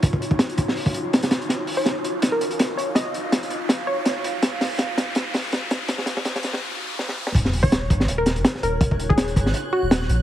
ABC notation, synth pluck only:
X:1
M:4/4
L:1/16
Q:"Swing 16ths" 1/4=164
K:Ebm
V:1 name="Synth pluck"
z16 | z3 d6 B2 z3 d2 | e4 z6 d4 z2 | z16 |
z16 | z3 d6 B2 z3 B2 | z3 A4 z3 G3 z3 |]